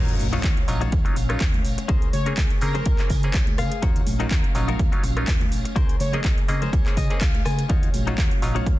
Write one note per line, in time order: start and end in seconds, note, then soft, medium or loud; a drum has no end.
0.00 0.14 D#2 loud
0.00 0.28 F#3 loud
0.00 1.87 F#3 medium
0.00 0.28 C#4 medium
0.00 1.87 C#4 medium
0.00 0.14 D#4 loud
0.00 0.28 D#4 medium
0.00 0.14 F4 medium
0.00 0.14 F#4 medium
0.00 0.14 C#5 loud
0.00 0.28 F5 loud
0.00 1.87 F5 medium
0.00 sub drop medium
0.09 closed hi-hat medium
0.09 tambourine soft
0.19 0.38 A#1 loud
0.19 open hi-hat loud
0.19 tambourine medium
0.19 high conga medium
0.33 0.39 F#3 medium
0.33 0.40 C#4 medium
0.33 0.57 D#4 medium
0.33 0.40 D#4 medium
0.33 0.40 F4 medium
0.33 0.57 F4 medium
0.33 0.57 F#4 medium
0.33 0.57 C#5 loud
0.33 closed hi-hat soft
0.33 tambourine soft
0.44 0.54 D#2 medium
0.44 kick loud
0.44 clap loud
0.44 closed hi-hat medium
0.57 closed hi-hat soft
0.57 tambourine soft
0.68 0.86 A#1 medium
0.68 0.81 F#3 medium
0.68 0.81 C#4 medium
0.68 0.81 D#4 medium
0.68 0.81 F4 loud
0.68 open hi-hat medium
0.68 tambourine loud
0.81 0.92 D#4 medium
0.81 0.92 F4 medium
0.81 0.92 F#4 medium
0.81 0.93 C#5 loud
0.81 closed hi-hat soft
0.81 tambourine soft
0.81 high conga medium
0.81 low conga medium
0.92 kick loud
0.92 closed hi-hat medium
0.92 tambourine medium
1.05 1.16 F#3 medium
1.05 1.16 C#4 medium
1.05 1.16 D#4 medium
1.05 1.16 F4 medium
1.05 muted clean electric guitar stroke loud
1.05 closed hi-hat soft
1.05 tambourine soft
1.16 1.35 A#1 loud
1.16 muted clean electric guitar stroke soft
1.16 open hi-hat loud
1.16 tambourine medium
1.29 1.40 F#3 medium
1.29 1.40 C#4 medium
1.29 1.40 D#4 medium
1.29 1.40 F4 medium
1.29 cross-stick medium
1.29 closed hi-hat soft
1.29 tambourine soft
1.40 1.65 D#2 medium
1.40 muted clean electric guitar stroke medium
1.40 kick loud
1.40 clap loud
1.40 closed hi-hat medium
1.54 muted clean electric guitar stroke soft
1.54 closed hi-hat soft
1.54 tambourine soft
1.54 high conga medium
1.65 1.75 A#1 medium
1.65 open hi-hat loud
1.65 tambourine loud
1.78 muted clean electric guitar stroke soft
1.78 closed hi-hat medium
1.78 tambourine soft
1.88 2.07 C#2 loud
1.88 2.08 C#4 loud
1.88 2.08 G#4 loud
1.88 3.81 G#4 medium
1.88 2.08 A#4 loud
1.88 2.08 C5 loud
1.88 kick loud
1.88 closed hi-hat medium
1.88 tambourine medium
2.02 closed hi-hat medium
2.02 tambourine soft
2.13 2.31 C#3 loud
2.13 2.28 C#5 medium
2.13 open hi-hat loud
2.13 tambourine loud
2.13 high conga loud
2.26 2.33 A#3 medium
2.26 2.33 C4 medium
2.26 2.51 C#4 medium
2.26 2.33 C#4 medium
2.26 2.51 G#4 medium
2.26 2.34 G#4 medium
2.26 2.51 A#4 medium
2.26 2.51 C#5 medium
2.26 closed hi-hat soft
2.26 tambourine soft
2.37 2.47 C#2 medium
2.37 kick loud
2.37 clap loud
2.37 closed hi-hat medium
2.37 tambourine soft
2.51 closed hi-hat soft
2.51 tambourine soft
2.61 2.80 C#3 medium
2.61 2.74 A#3 medium
2.61 2.75 C4 medium
2.61 2.75 C#4 medium
2.61 2.75 G#4 loud
2.61 3.10 A#4 loud
2.61 open hi-hat loud
2.61 tambourine medium
2.74 2.86 C#4 medium
2.74 2.86 G#4 medium
2.74 2.86 A#4 medium
2.74 2.86 C5 loud
2.74 closed hi-hat soft
2.74 tambourine soft
2.74 high conga medium
2.74 low conga medium
2.85 2.96 C#2 medium
2.85 kick loud
2.85 closed hi-hat medium
2.85 tambourine medium
2.99 3.10 A#3 medium
2.99 3.10 C4 medium
2.99 3.10 C#4 medium
2.99 3.10 G#4 medium
2.99 muted clean electric guitar stroke loud
2.99 clap soft
2.99 closed hi-hat soft
2.99 tambourine soft
3.10 3.28 C#3 loud
3.10 muted clean electric guitar stroke soft
3.10 kick medium
3.10 open hi-hat loud
3.10 tambourine medium
3.23 3.34 A#3 medium
3.23 3.34 C4 medium
3.23 3.34 C#4 medium
3.23 3.34 G#4 medium
3.23 closed hi-hat soft
3.23 tambourine soft
3.34 3.60 C#2 medium
3.34 3.47 C#5 medium
3.34 muted clean electric guitar stroke medium
3.34 kick loud
3.34 clap loud
3.34 closed hi-hat medium
3.47 muted clean electric guitar stroke soft
3.47 closed hi-hat soft
3.47 tambourine soft
3.47 high conga medium
3.58 3.68 C#3 medium
3.58 3.81 F5 medium
3.58 cross-stick medium
3.58 open hi-hat medium
3.58 tambourine loud
3.72 muted clean electric guitar stroke soft
3.72 closed hi-hat medium
3.72 tambourine soft
3.82 4.01 D#2 loud
3.82 5.74 F#3 medium
3.82 5.74 C#4 medium
3.82 4.01 D#4 loud
3.82 4.01 F4 loud
3.82 4.02 F#4 medium
3.82 4.02 C#5 loud
3.82 5.74 F5 medium
3.82 kick loud
3.82 closed hi-hat medium
3.82 tambourine soft
3.96 closed hi-hat medium
3.96 tambourine soft
4.07 4.25 A#1 loud
4.07 open hi-hat loud
4.07 tambourine medium
4.07 high conga loud
4.20 4.27 F#3 medium
4.20 4.27 C#4 medium
4.20 4.44 D#4 loud
4.20 4.27 D#4 medium
4.20 4.44 F4 medium
4.20 4.27 F4 medium
4.20 4.44 F#4 medium
4.20 4.44 A#4 loud
4.20 closed hi-hat soft
4.20 tambourine soft
4.30 4.41 D#2 medium
4.30 kick loud
4.30 clap loud
4.30 closed hi-hat medium
4.30 tambourine soft
4.44 closed hi-hat soft
4.44 tambourine soft
4.55 4.73 A#1 medium
4.55 4.68 F#3 loud
4.55 4.68 C#4 medium
4.55 4.68 D#4 medium
4.55 4.68 F4 loud
4.55 open hi-hat loud
4.55 tambourine medium
4.68 4.79 D#4 loud
4.68 4.79 F4 medium
4.68 4.80 F#4 medium
4.68 4.80 A#4 medium
4.68 closed hi-hat soft
4.68 tambourine soft
4.68 high conga medium
4.68 low conga medium
4.79 4.89 D#2 medium
4.79 kick loud
4.79 closed hi-hat medium
4.79 tambourine soft
4.92 5.03 F#3 medium
4.92 5.03 C#4 medium
4.92 5.03 D#4 medium
4.92 5.03 F4 medium
4.92 muted clean electric guitar stroke loud
4.92 closed hi-hat soft
4.92 tambourine soft
5.03 5.22 A#1 loud
5.03 muted clean electric guitar stroke soft
5.03 open hi-hat loud
5.03 tambourine medium
5.17 5.27 F#3 medium
5.17 5.28 C#4 medium
5.17 5.28 D#4 medium
5.17 5.28 F4 medium
5.17 cross-stick medium
5.17 closed hi-hat soft
5.17 tambourine soft
5.28 5.52 D#2 medium
5.28 muted clean electric guitar stroke medium
5.28 kick loud
5.28 clap loud
5.28 closed hi-hat medium
5.41 muted clean electric guitar stroke soft
5.41 closed hi-hat soft
5.41 tambourine soft
5.41 high conga medium
5.52 5.62 A#1 medium
5.52 open hi-hat loud
5.52 tambourine loud
5.65 muted clean electric guitar stroke soft
5.65 closed hi-hat medium
5.65 tambourine soft
5.76 5.94 C#2 loud
5.76 5.95 C#4 loud
5.76 7.68 G#4 medium
5.76 5.95 G#4 medium
5.76 5.95 A#4 loud
5.76 5.95 C5 loud
5.76 kick loud
5.76 closed hi-hat medium
5.76 tambourine medium
5.89 closed hi-hat soft
5.89 tambourine soft
6.00 6.18 C#3 loud
6.00 6.15 C#5 loud
6.00 open hi-hat loud
6.00 tambourine medium
6.00 high conga medium
6.13 6.20 A#3 medium
6.13 6.20 C4 medium
6.13 6.38 C#4 medium
6.13 6.20 C#4 medium
6.13 6.38 G#4 medium
6.13 6.20 G#4 medium
6.13 6.38 A#4 medium
6.13 6.38 D#5 medium
6.13 closed hi-hat soft
6.13 tambourine soft
6.13 low conga medium
6.24 6.34 C#2 medium
6.24 kick loud
6.24 clap loud
6.24 closed hi-hat medium
6.24 tambourine soft
6.38 closed hi-hat soft
6.38 tambourine soft
6.48 6.67 C#3 medium
6.48 6.61 A#3 medium
6.48 6.61 C4 medium
6.48 6.62 C#4 medium
6.48 6.62 G#4 loud
6.48 6.62 D#5 medium
6.48 open hi-hat loud
6.48 tambourine medium
6.62 6.73 C#4 medium
6.62 6.73 G#4 medium
6.62 6.73 A#4 medium
6.62 6.73 C5 medium
6.62 closed hi-hat soft
6.62 tambourine soft
6.62 high conga medium
6.62 low conga medium
6.73 6.83 C#2 loud
6.73 6.96 C#5 medium
6.73 kick loud
6.73 closed hi-hat medium
6.73 tambourine soft
6.86 6.97 A#3 medium
6.86 6.97 C4 medium
6.86 6.97 C#4 medium
6.86 6.97 G#4 medium
6.86 muted clean electric guitar stroke loud
6.86 clap soft
6.86 closed hi-hat soft
6.86 tambourine soft
6.97 7.07 C#3 loud
6.97 7.20 D#5 medium
6.97 muted clean electric guitar stroke soft
6.97 kick medium
6.97 open hi-hat loud
6.97 tambourine medium
7.10 7.21 A#3 medium
7.10 7.21 C4 medium
7.10 7.21 C#4 medium
7.10 7.21 G#4 medium
7.10 closed hi-hat soft
7.10 tambourine soft
7.21 7.39 C#2 loud
7.21 7.44 F5 medium
7.21 muted clean electric guitar stroke medium
7.21 kick loud
7.21 clap loud
7.21 closed hi-hat medium
7.34 muted clean electric guitar stroke soft
7.34 closed hi-hat soft
7.34 tambourine soft
7.34 high conga medium
7.45 7.64 C#3 loud
7.45 7.68 G#5 medium
7.45 cross-stick medium
7.45 open hi-hat medium
7.45 tambourine medium
7.58 muted clean electric guitar stroke soft
7.58 closed hi-hat medium
7.58 tambourine soft
7.69 7.88 D#2 loud
7.69 8.79 F#3 medium
7.69 8.79 C#4 medium
7.69 7.88 D#4 loud
7.69 7.88 F4 loud
7.69 7.89 F#4 medium
7.69 7.89 C#5 loud
7.69 8.79 F5 medium
7.69 kick loud
7.69 closed hi-hat medium
7.69 tambourine soft
7.83 closed hi-hat medium
7.83 tambourine soft
7.94 8.12 A#1 loud
7.94 open hi-hat loud
7.94 tambourine medium
7.94 high conga loud
8.07 8.14 F#3 medium
8.07 8.14 C#4 medium
8.07 8.31 D#4 medium
8.07 8.14 D#4 medium
8.07 8.31 F4 medium
8.07 8.14 F4 medium
8.07 8.32 F#4 medium
8.07 8.32 C#5 loud
8.07 closed hi-hat soft
8.07 tambourine soft
8.18 8.28 D#2 medium
8.18 kick loud
8.18 clap loud
8.18 closed hi-hat medium
8.31 closed hi-hat soft
8.31 tambourine soft
8.42 8.60 A#1 medium
8.42 8.55 F#3 medium
8.42 8.55 C#4 medium
8.42 8.55 D#4 medium
8.42 8.55 F4 loud
8.42 open hi-hat medium
8.42 tambourine medium
8.55 8.66 D#4 medium
8.55 8.66 F4 medium
8.55 8.67 F#4 medium
8.55 8.67 C#5 loud
8.55 closed hi-hat soft
8.55 tambourine soft
8.55 high conga medium
8.55 low conga medium
8.66 8.76 D#2 medium
8.66 kick loud
8.66 closed hi-hat medium
8.66 tambourine soft